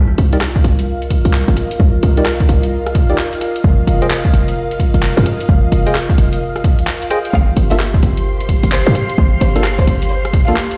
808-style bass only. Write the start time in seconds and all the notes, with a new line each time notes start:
0.18 C2
0.64 C2
1.25 C2
1.48 G1
1.80 C2
2.03 C2
2.49 C2
3.64 F1
3.87 F1
4.33 F1
4.94 F1
5.17 F2
5.49 F1
5.72 F1
6.18 F1
7.33 G1
7.57 G1
8.03 G1
8.63 G1
8.87 G2
9.18 G1
9.41 G1
9.87 G1